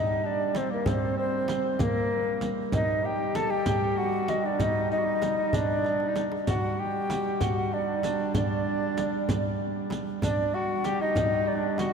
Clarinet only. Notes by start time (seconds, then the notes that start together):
Already playing: D#4
0.23 D4
0.54 C4
0.70 A#3
0.85 C4
1.17 C4
1.72 C4
1.78 A#3
2.72 D#4
3.03 G4
3.36 A4
3.51 G4
3.97 F#4
4.44 D4 D#4
4.51 D4
4.58 D#4
4.91 D#4
4.98 F#4
5.05 D#4
5.38 D#4
5.53 D4
6.08 D#4
6.47 F#4
6.79 G4
7.42 F#4
7.73 D4
7.80 D#4
7.87 D4
7.96 D#4
8.04 D4
8.34 D4
10.23 D4
10.54 F#4
10.85 G4
11.01 D#4
11.48 D4
11.79 F#4